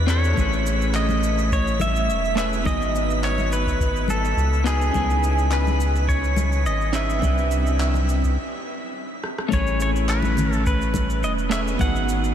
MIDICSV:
0, 0, Header, 1, 6, 480
1, 0, Start_track
1, 0, Tempo, 571429
1, 313, Time_signature, 4, 2, 24, 8
1, 10369, End_track
2, 0, Start_track
2, 0, Title_t, "Synth texture"
2, 0, Program_c, 0, 99
2, 0, Note_on_c, 0, 95, 77
2, 7032, Note_off_c, 0, 95, 0
2, 10369, End_track
3, 0, Start_track
3, 0, Title_t, "Pedal steel guitar"
3, 0, Program_c, 1, 26
3, 82, Note_on_c, 1, 73, 99
3, 800, Note_off_c, 1, 73, 0
3, 803, Note_on_c, 1, 75, 87
3, 1280, Note_off_c, 1, 75, 0
3, 1284, Note_on_c, 1, 73, 98
3, 1519, Note_off_c, 1, 73, 0
3, 1522, Note_on_c, 1, 76, 103
3, 1989, Note_off_c, 1, 76, 0
3, 1999, Note_on_c, 1, 76, 97
3, 2063, Note_off_c, 1, 76, 0
3, 2236, Note_on_c, 1, 75, 103
3, 2720, Note_off_c, 1, 75, 0
3, 2723, Note_on_c, 1, 73, 89
3, 2964, Note_on_c, 1, 71, 99
3, 2966, Note_off_c, 1, 73, 0
3, 3446, Note_on_c, 1, 69, 91
3, 3453, Note_off_c, 1, 71, 0
3, 3887, Note_off_c, 1, 69, 0
3, 3922, Note_on_c, 1, 68, 92
3, 4642, Note_on_c, 1, 71, 92
3, 4659, Note_off_c, 1, 68, 0
3, 5112, Note_on_c, 1, 73, 95
3, 5132, Note_off_c, 1, 71, 0
3, 5594, Note_off_c, 1, 73, 0
3, 5597, Note_on_c, 1, 75, 91
3, 5835, Note_off_c, 1, 75, 0
3, 5838, Note_on_c, 1, 76, 88
3, 7482, Note_off_c, 1, 76, 0
3, 8009, Note_on_c, 1, 73, 86
3, 8225, Note_off_c, 1, 73, 0
3, 8250, Note_on_c, 1, 73, 83
3, 8313, Note_off_c, 1, 73, 0
3, 8480, Note_on_c, 1, 71, 84
3, 8866, Note_off_c, 1, 71, 0
3, 8866, Note_on_c, 1, 69, 84
3, 8951, Note_off_c, 1, 69, 0
3, 8961, Note_on_c, 1, 71, 87
3, 9442, Note_on_c, 1, 75, 97
3, 9452, Note_off_c, 1, 71, 0
3, 9505, Note_off_c, 1, 75, 0
3, 9677, Note_on_c, 1, 76, 101
3, 9741, Note_off_c, 1, 76, 0
3, 9919, Note_on_c, 1, 78, 97
3, 10369, Note_off_c, 1, 78, 0
3, 10369, End_track
4, 0, Start_track
4, 0, Title_t, "Clean electric guitar"
4, 0, Program_c, 2, 27
4, 56, Note_on_c, 2, 60, 70
4, 65, Note_on_c, 2, 62, 61
4, 71, Note_on_c, 2, 64, 65
4, 77, Note_on_c, 2, 67, 66
4, 87, Note_on_c, 2, 69, 79
4, 278, Note_off_c, 2, 60, 0
4, 282, Note_off_c, 2, 62, 0
4, 283, Note_on_c, 2, 57, 69
4, 285, Note_off_c, 2, 64, 0
4, 288, Note_off_c, 2, 67, 0
4, 293, Note_off_c, 2, 69, 0
4, 298, Note_on_c, 2, 61, 64
4, 314, Note_on_c, 2, 64, 63
4, 329, Note_on_c, 2, 68, 66
4, 344, Note_on_c, 2, 71, 80
4, 1951, Note_off_c, 2, 57, 0
4, 1959, Note_off_c, 2, 61, 0
4, 1967, Note_off_c, 2, 64, 0
4, 1974, Note_off_c, 2, 68, 0
4, 1977, Note_on_c, 2, 57, 73
4, 1982, Note_off_c, 2, 71, 0
4, 1986, Note_on_c, 2, 61, 63
4, 1994, Note_on_c, 2, 64, 67
4, 2001, Note_on_c, 2, 68, 65
4, 2010, Note_on_c, 2, 71, 78
4, 2198, Note_off_c, 2, 57, 0
4, 2201, Note_on_c, 2, 59, 76
4, 2203, Note_off_c, 2, 61, 0
4, 2207, Note_off_c, 2, 64, 0
4, 2210, Note_off_c, 2, 68, 0
4, 2215, Note_off_c, 2, 71, 0
4, 2217, Note_on_c, 2, 63, 68
4, 2234, Note_on_c, 2, 66, 65
4, 2248, Note_on_c, 2, 80, 66
4, 2265, Note_on_c, 2, 71, 77
4, 3870, Note_off_c, 2, 59, 0
4, 3878, Note_off_c, 2, 63, 0
4, 3886, Note_off_c, 2, 66, 0
4, 3893, Note_off_c, 2, 80, 0
4, 3899, Note_on_c, 2, 59, 72
4, 3902, Note_off_c, 2, 71, 0
4, 3910, Note_on_c, 2, 63, 66
4, 3914, Note_on_c, 2, 66, 68
4, 3921, Note_on_c, 2, 68, 65
4, 3927, Note_off_c, 2, 68, 0
4, 3930, Note_on_c, 2, 71, 79
4, 4119, Note_off_c, 2, 59, 0
4, 4125, Note_off_c, 2, 63, 0
4, 4126, Note_on_c, 2, 61, 70
4, 4127, Note_off_c, 2, 66, 0
4, 4135, Note_off_c, 2, 71, 0
4, 4140, Note_on_c, 2, 63, 66
4, 4154, Note_on_c, 2, 64, 66
4, 4170, Note_on_c, 2, 68, 71
4, 4185, Note_on_c, 2, 71, 75
4, 5793, Note_off_c, 2, 61, 0
4, 5799, Note_off_c, 2, 63, 0
4, 5806, Note_off_c, 2, 64, 0
4, 5814, Note_off_c, 2, 68, 0
4, 5818, Note_on_c, 2, 61, 71
4, 5822, Note_off_c, 2, 71, 0
4, 5824, Note_on_c, 2, 63, 69
4, 5831, Note_on_c, 2, 64, 69
4, 5838, Note_on_c, 2, 68, 68
4, 5845, Note_on_c, 2, 71, 81
4, 6036, Note_off_c, 2, 61, 0
4, 6040, Note_on_c, 2, 60, 72
4, 6041, Note_off_c, 2, 63, 0
4, 6045, Note_off_c, 2, 64, 0
4, 6048, Note_off_c, 2, 68, 0
4, 6052, Note_off_c, 2, 71, 0
4, 6055, Note_on_c, 2, 62, 67
4, 6070, Note_on_c, 2, 64, 67
4, 6086, Note_on_c, 2, 67, 65
4, 6102, Note_on_c, 2, 71, 79
4, 7017, Note_off_c, 2, 60, 0
4, 7024, Note_off_c, 2, 62, 0
4, 7032, Note_off_c, 2, 64, 0
4, 7040, Note_off_c, 2, 67, 0
4, 7048, Note_off_c, 2, 71, 0
4, 7966, Note_on_c, 2, 57, 74
4, 7980, Note_on_c, 2, 61, 69
4, 7997, Note_on_c, 2, 64, 71
4, 8010, Note_on_c, 2, 68, 67
4, 8028, Note_on_c, 2, 71, 87
4, 9633, Note_off_c, 2, 57, 0
4, 9640, Note_off_c, 2, 61, 0
4, 9648, Note_off_c, 2, 64, 0
4, 9655, Note_off_c, 2, 68, 0
4, 9655, Note_on_c, 2, 57, 78
4, 9664, Note_off_c, 2, 71, 0
4, 9664, Note_on_c, 2, 61, 67
4, 9670, Note_on_c, 2, 64, 68
4, 9679, Note_on_c, 2, 68, 71
4, 9686, Note_on_c, 2, 71, 80
4, 9874, Note_off_c, 2, 57, 0
4, 9877, Note_on_c, 2, 59, 74
4, 9882, Note_off_c, 2, 61, 0
4, 9885, Note_off_c, 2, 64, 0
4, 9889, Note_off_c, 2, 68, 0
4, 9892, Note_off_c, 2, 71, 0
4, 9894, Note_on_c, 2, 63, 67
4, 9908, Note_on_c, 2, 66, 66
4, 9925, Note_on_c, 2, 68, 68
4, 9939, Note_on_c, 2, 71, 80
4, 10369, Note_off_c, 2, 59, 0
4, 10369, Note_off_c, 2, 63, 0
4, 10369, Note_off_c, 2, 66, 0
4, 10369, Note_off_c, 2, 68, 0
4, 10369, Note_off_c, 2, 71, 0
4, 10369, End_track
5, 0, Start_track
5, 0, Title_t, "Analog synth bass"
5, 0, Program_c, 3, 38
5, 0, Note_on_c, 3, 40, 95
5, 284, Note_off_c, 3, 40, 0
5, 312, Note_on_c, 3, 33, 103
5, 1753, Note_on_c, 3, 28, 99
5, 1765, Note_off_c, 3, 33, 0
5, 2231, Note_on_c, 3, 32, 96
5, 2244, Note_off_c, 3, 28, 0
5, 3644, Note_off_c, 3, 32, 0
5, 3666, Note_on_c, 3, 37, 80
5, 4121, Note_off_c, 3, 37, 0
5, 4151, Note_on_c, 3, 37, 98
5, 5587, Note_on_c, 3, 32, 92
5, 5599, Note_off_c, 3, 37, 0
5, 6070, Note_on_c, 3, 36, 105
5, 6083, Note_off_c, 3, 32, 0
5, 7032, Note_off_c, 3, 36, 0
5, 7992, Note_on_c, 3, 33, 104
5, 9433, Note_on_c, 3, 28, 101
5, 9446, Note_off_c, 3, 33, 0
5, 9885, Note_off_c, 3, 28, 0
5, 9912, Note_on_c, 3, 32, 107
5, 10369, Note_off_c, 3, 32, 0
5, 10369, End_track
6, 0, Start_track
6, 0, Title_t, "Drums"
6, 76, Note_on_c, 9, 39, 69
6, 77, Note_on_c, 9, 69, 68
6, 160, Note_off_c, 9, 39, 0
6, 161, Note_off_c, 9, 69, 0
6, 203, Note_on_c, 9, 69, 32
6, 287, Note_off_c, 9, 69, 0
6, 312, Note_on_c, 9, 36, 107
6, 313, Note_on_c, 9, 63, 78
6, 319, Note_on_c, 9, 69, 41
6, 396, Note_off_c, 9, 36, 0
6, 397, Note_off_c, 9, 63, 0
6, 403, Note_off_c, 9, 69, 0
6, 446, Note_on_c, 9, 69, 20
6, 530, Note_off_c, 9, 69, 0
6, 558, Note_on_c, 9, 69, 73
6, 642, Note_off_c, 9, 69, 0
6, 686, Note_on_c, 9, 69, 31
6, 770, Note_off_c, 9, 69, 0
6, 795, Note_on_c, 9, 39, 74
6, 796, Note_on_c, 9, 69, 41
6, 879, Note_off_c, 9, 39, 0
6, 880, Note_off_c, 9, 69, 0
6, 913, Note_on_c, 9, 63, 64
6, 923, Note_on_c, 9, 69, 22
6, 997, Note_off_c, 9, 63, 0
6, 1007, Note_off_c, 9, 69, 0
6, 1036, Note_on_c, 9, 69, 70
6, 1120, Note_off_c, 9, 69, 0
6, 1164, Note_on_c, 9, 69, 30
6, 1248, Note_off_c, 9, 69, 0
6, 1271, Note_on_c, 9, 36, 113
6, 1279, Note_on_c, 9, 69, 41
6, 1355, Note_off_c, 9, 36, 0
6, 1363, Note_off_c, 9, 69, 0
6, 1406, Note_on_c, 9, 69, 21
6, 1490, Note_off_c, 9, 69, 0
6, 1508, Note_on_c, 9, 63, 87
6, 1521, Note_on_c, 9, 69, 73
6, 1592, Note_off_c, 9, 63, 0
6, 1605, Note_off_c, 9, 69, 0
6, 1646, Note_on_c, 9, 69, 31
6, 1730, Note_off_c, 9, 69, 0
6, 1762, Note_on_c, 9, 69, 41
6, 1846, Note_off_c, 9, 69, 0
6, 1888, Note_on_c, 9, 69, 19
6, 1972, Note_off_c, 9, 69, 0
6, 1999, Note_on_c, 9, 39, 69
6, 2000, Note_on_c, 9, 69, 72
6, 2083, Note_off_c, 9, 39, 0
6, 2084, Note_off_c, 9, 69, 0
6, 2126, Note_on_c, 9, 69, 31
6, 2210, Note_off_c, 9, 69, 0
6, 2229, Note_on_c, 9, 63, 85
6, 2232, Note_on_c, 9, 36, 103
6, 2242, Note_on_c, 9, 69, 42
6, 2313, Note_off_c, 9, 63, 0
6, 2316, Note_off_c, 9, 36, 0
6, 2326, Note_off_c, 9, 69, 0
6, 2368, Note_on_c, 9, 69, 20
6, 2452, Note_off_c, 9, 69, 0
6, 2483, Note_on_c, 9, 69, 69
6, 2567, Note_off_c, 9, 69, 0
6, 2607, Note_on_c, 9, 69, 29
6, 2691, Note_off_c, 9, 69, 0
6, 2722, Note_on_c, 9, 39, 69
6, 2724, Note_on_c, 9, 69, 43
6, 2806, Note_off_c, 9, 39, 0
6, 2808, Note_off_c, 9, 69, 0
6, 2839, Note_on_c, 9, 63, 58
6, 2846, Note_on_c, 9, 69, 21
6, 2923, Note_off_c, 9, 63, 0
6, 2930, Note_off_c, 9, 69, 0
6, 2961, Note_on_c, 9, 69, 72
6, 3045, Note_off_c, 9, 69, 0
6, 3077, Note_on_c, 9, 36, 62
6, 3089, Note_on_c, 9, 69, 29
6, 3161, Note_off_c, 9, 36, 0
6, 3173, Note_off_c, 9, 69, 0
6, 3190, Note_on_c, 9, 36, 106
6, 3201, Note_on_c, 9, 69, 43
6, 3274, Note_off_c, 9, 36, 0
6, 3285, Note_off_c, 9, 69, 0
6, 3328, Note_on_c, 9, 69, 19
6, 3412, Note_off_c, 9, 69, 0
6, 3427, Note_on_c, 9, 63, 91
6, 3442, Note_on_c, 9, 69, 67
6, 3511, Note_off_c, 9, 63, 0
6, 3526, Note_off_c, 9, 69, 0
6, 3569, Note_on_c, 9, 69, 30
6, 3653, Note_off_c, 9, 69, 0
6, 3681, Note_on_c, 9, 69, 41
6, 3765, Note_off_c, 9, 69, 0
6, 3808, Note_on_c, 9, 69, 20
6, 3892, Note_off_c, 9, 69, 0
6, 3920, Note_on_c, 9, 39, 70
6, 3922, Note_on_c, 9, 69, 67
6, 4004, Note_off_c, 9, 39, 0
6, 4006, Note_off_c, 9, 69, 0
6, 4046, Note_on_c, 9, 69, 29
6, 4130, Note_off_c, 9, 69, 0
6, 4149, Note_on_c, 9, 36, 105
6, 4153, Note_on_c, 9, 63, 83
6, 4157, Note_on_c, 9, 69, 38
6, 4233, Note_off_c, 9, 36, 0
6, 4237, Note_off_c, 9, 63, 0
6, 4241, Note_off_c, 9, 69, 0
6, 4287, Note_on_c, 9, 69, 19
6, 4371, Note_off_c, 9, 69, 0
6, 4399, Note_on_c, 9, 69, 70
6, 4483, Note_off_c, 9, 69, 0
6, 4522, Note_on_c, 9, 69, 29
6, 4606, Note_off_c, 9, 69, 0
6, 4634, Note_on_c, 9, 39, 77
6, 4635, Note_on_c, 9, 69, 41
6, 4718, Note_off_c, 9, 39, 0
6, 4719, Note_off_c, 9, 69, 0
6, 4764, Note_on_c, 9, 63, 57
6, 4764, Note_on_c, 9, 69, 21
6, 4848, Note_off_c, 9, 63, 0
6, 4848, Note_off_c, 9, 69, 0
6, 4876, Note_on_c, 9, 69, 68
6, 4960, Note_off_c, 9, 69, 0
6, 5004, Note_on_c, 9, 69, 27
6, 5088, Note_off_c, 9, 69, 0
6, 5109, Note_on_c, 9, 36, 108
6, 5119, Note_on_c, 9, 69, 42
6, 5193, Note_off_c, 9, 36, 0
6, 5203, Note_off_c, 9, 69, 0
6, 5243, Note_on_c, 9, 69, 19
6, 5327, Note_off_c, 9, 69, 0
6, 5347, Note_on_c, 9, 63, 94
6, 5355, Note_on_c, 9, 69, 70
6, 5431, Note_off_c, 9, 63, 0
6, 5439, Note_off_c, 9, 69, 0
6, 5481, Note_on_c, 9, 69, 30
6, 5565, Note_off_c, 9, 69, 0
6, 5595, Note_on_c, 9, 69, 40
6, 5679, Note_off_c, 9, 69, 0
6, 5720, Note_on_c, 9, 69, 18
6, 5804, Note_off_c, 9, 69, 0
6, 5830, Note_on_c, 9, 39, 69
6, 5832, Note_on_c, 9, 69, 65
6, 5914, Note_off_c, 9, 39, 0
6, 5916, Note_off_c, 9, 69, 0
6, 5962, Note_on_c, 9, 69, 32
6, 6046, Note_off_c, 9, 69, 0
6, 6065, Note_on_c, 9, 63, 80
6, 6069, Note_on_c, 9, 36, 106
6, 6076, Note_on_c, 9, 69, 42
6, 6149, Note_off_c, 9, 63, 0
6, 6153, Note_off_c, 9, 36, 0
6, 6160, Note_off_c, 9, 69, 0
6, 6201, Note_on_c, 9, 69, 21
6, 6285, Note_off_c, 9, 69, 0
6, 6312, Note_on_c, 9, 69, 75
6, 6396, Note_off_c, 9, 69, 0
6, 6441, Note_on_c, 9, 69, 31
6, 6525, Note_off_c, 9, 69, 0
6, 6555, Note_on_c, 9, 39, 78
6, 6557, Note_on_c, 9, 69, 42
6, 6639, Note_off_c, 9, 39, 0
6, 6641, Note_off_c, 9, 69, 0
6, 6671, Note_on_c, 9, 63, 57
6, 6681, Note_on_c, 9, 69, 20
6, 6755, Note_off_c, 9, 63, 0
6, 6765, Note_off_c, 9, 69, 0
6, 6797, Note_on_c, 9, 69, 69
6, 6881, Note_off_c, 9, 69, 0
6, 6917, Note_on_c, 9, 36, 60
6, 6923, Note_on_c, 9, 69, 30
6, 7001, Note_off_c, 9, 36, 0
6, 7007, Note_off_c, 9, 69, 0
6, 7757, Note_on_c, 9, 37, 60
6, 7841, Note_off_c, 9, 37, 0
6, 7883, Note_on_c, 9, 37, 69
6, 7967, Note_off_c, 9, 37, 0
6, 7992, Note_on_c, 9, 36, 116
6, 7997, Note_on_c, 9, 63, 93
6, 7998, Note_on_c, 9, 69, 44
6, 8076, Note_off_c, 9, 36, 0
6, 8081, Note_off_c, 9, 63, 0
6, 8082, Note_off_c, 9, 69, 0
6, 8124, Note_on_c, 9, 69, 20
6, 8208, Note_off_c, 9, 69, 0
6, 8235, Note_on_c, 9, 69, 74
6, 8319, Note_off_c, 9, 69, 0
6, 8366, Note_on_c, 9, 69, 31
6, 8450, Note_off_c, 9, 69, 0
6, 8476, Note_on_c, 9, 39, 76
6, 8477, Note_on_c, 9, 69, 41
6, 8560, Note_off_c, 9, 39, 0
6, 8561, Note_off_c, 9, 69, 0
6, 8588, Note_on_c, 9, 63, 69
6, 8606, Note_on_c, 9, 69, 22
6, 8672, Note_off_c, 9, 63, 0
6, 8690, Note_off_c, 9, 69, 0
6, 8710, Note_on_c, 9, 64, 77
6, 8719, Note_on_c, 9, 69, 78
6, 8794, Note_off_c, 9, 64, 0
6, 8803, Note_off_c, 9, 69, 0
6, 8843, Note_on_c, 9, 69, 32
6, 8927, Note_off_c, 9, 69, 0
6, 8953, Note_on_c, 9, 36, 116
6, 8956, Note_on_c, 9, 69, 47
6, 9037, Note_off_c, 9, 36, 0
6, 9040, Note_off_c, 9, 69, 0
6, 9084, Note_on_c, 9, 69, 23
6, 9168, Note_off_c, 9, 69, 0
6, 9187, Note_on_c, 9, 63, 88
6, 9192, Note_on_c, 9, 36, 64
6, 9197, Note_on_c, 9, 69, 75
6, 9271, Note_off_c, 9, 63, 0
6, 9276, Note_off_c, 9, 36, 0
6, 9281, Note_off_c, 9, 69, 0
6, 9324, Note_on_c, 9, 69, 31
6, 9408, Note_off_c, 9, 69, 0
6, 9437, Note_on_c, 9, 69, 46
6, 9521, Note_off_c, 9, 69, 0
6, 9564, Note_on_c, 9, 69, 23
6, 9648, Note_off_c, 9, 69, 0
6, 9676, Note_on_c, 9, 39, 78
6, 9678, Note_on_c, 9, 69, 76
6, 9760, Note_off_c, 9, 39, 0
6, 9762, Note_off_c, 9, 69, 0
6, 9807, Note_on_c, 9, 69, 33
6, 9891, Note_off_c, 9, 69, 0
6, 9905, Note_on_c, 9, 63, 88
6, 9912, Note_on_c, 9, 36, 126
6, 9917, Note_on_c, 9, 69, 48
6, 9989, Note_off_c, 9, 63, 0
6, 9996, Note_off_c, 9, 36, 0
6, 10001, Note_off_c, 9, 69, 0
6, 10044, Note_on_c, 9, 69, 22
6, 10128, Note_off_c, 9, 69, 0
6, 10156, Note_on_c, 9, 69, 79
6, 10240, Note_off_c, 9, 69, 0
6, 10283, Note_on_c, 9, 69, 34
6, 10367, Note_off_c, 9, 69, 0
6, 10369, End_track
0, 0, End_of_file